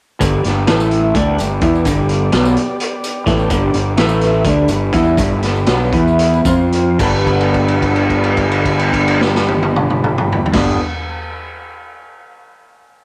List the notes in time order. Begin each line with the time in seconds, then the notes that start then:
0.20 G1 G2 D3 G3 B3 G4 D5, kick, closed hi-hat, tambourine
0.43 G1 G2 D3, snare, closed hi-hat
0.67 A1 A2 E3 A3 E4 E5, snare, closed hi-hat, tambourine
0.80 tambourine
0.91 closed hi-hat
1.14 D2 D3 A3 B3 D4 G4 D5, kick, closed hi-hat, tambourine
1.38 G1 G2 D3, closed hi-hat, tambourine
1.61 E2 E3 B3 E4, kick, closed hi-hat, tambourine
1.75 tambourine
1.85 G1 G2 D3 G3, kick, closed hi-hat, tambourine
2.09 closed hi-hat
2.32 B1 B2 F#3 B3, snare, closed hi-hat, tambourine
2.45 tambourine
2.57 closed hi-hat
2.80 closed hi-hat, tambourine
3.04 closed hi-hat, tambourine
3.26 A1 A2 E3 A3, kick, snare, closed hi-hat, tambourine
3.39 tambourine
3.50 G1 G2 D3 G3, kick, closed hi-hat, tambourine
3.74 G1 G2 D3, closed hi-hat
3.97 A1 A2 E3 A3 E4 E5, snare, closed hi-hat, tambourine
4.09 tambourine
4.21 snare, closed hi-hat
4.44 D2 D3 G3 A3 D4 B4, kick, closed hi-hat, tambourine
4.68 G1 G2 D3, closed hi-hat, tambourine
4.93 E2 E3 B3 E4, kick, snare, closed hi-hat, tambourine
5.05 tambourine
5.17 G1 G2 D3 G3, kick, closed hi-hat, tambourine
5.43 snare, closed hi-hat
5.56 tambourine
5.66 B1 B2 F#3 B3, snare, closed hi-hat
5.92 E2 E3 B3 E4 B4, kick, closed hi-hat
6.07 tambourine
6.19 closed hi-hat
6.33 tambourine
6.44 F2 F3 C4 F4 C5, kick, closed hi-hat, tambourine
6.59 tambourine
6.72 closed hi-hat
6.99 G1 G2 D3 G3 B3 D4 B4, kick, crash, tambourine
7.03 D4
7.27 kick, crash
7.41 crash
7.54 kick, crash
7.68 crash
7.82 kick, crash
7.96 crash
8.10 kick, crash
8.24 crash
8.37 kick, crash
8.52 crash
8.65 kick, crash
8.79 crash
8.93 kick, crash
9.08 crash
9.21 snare
9.35 snare
9.48 high tom
9.63 high tom
9.76 mid tom
9.90 mid tom
10.04 mid tom
10.18 mid tom
10.32 floor tom
10.46 floor tom
10.52 G1 G2 D3 G3 B3 D4 B4, kick, snare, crash